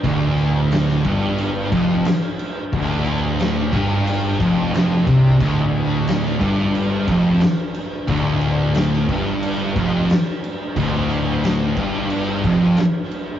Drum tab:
CC |x-x-x-x-x-x-x-x-|x-x-x-x-x-x-x-x-|x-x-x-x-x-x-x-x-|x-x-x-x-x-x-x-x-|
SD |----oo------o---|----o-------o---|----oo------o---|----oo------o---|
BD |o-----o---o-----|o-----o---o---o-|o-----o---o-----|o-----o---o-----|

CC |x-x-x-x-x-x-x-x-|
SD |----o-------o---|
BD |o-----o---o-----|